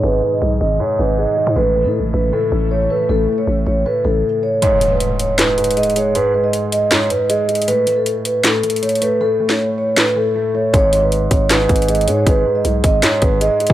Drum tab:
HH |------------------------------------------------|------------------------------------------------|------------------------------------------------|x-----x-----x-----x-----x-----x-x-x-x-x-x-x-----|
CP |------------------------------------------------|------------------------------------------------|------------------------------------------------|------------------------x-----------------------|
SD |------------------------------------------------|------------------------------------------------|------------------------------------------------|------------------------o-----------------------|
BD |------------------------------------------------|------------------------------------------------|------------------------------------------------|------------------------------------------------|

HH |x-----------x-----x-----x-----x-----x-----x-x-x-|x-----x-----x-----x-----x-----x-x-x-x-x-x-x-----|------------------------------------------------|x-----x-----x-----x-----x-----x-x-x-x-x-x-x-----|
CP |------------------------x-----------------------|------------------------x-----------------------|------------------------x-----------------------|------------------------x-----------------------|
SD |------------------------o-----------------------|------------------------o-----------------------|---------o--------------o-----------------------|------------------------o-----------------------|
BD |------------------------------------------------|------------------------------------------------|------------------------------------------------|o-----------------o-----------o-----------------|

HH |x-----------x-----x-----x-----x-----x-----x-x---|
CP |------------------------x-----------------------|
SD |------------------------o-----------------------|
BD |o-----------------o-----------o--------------o--|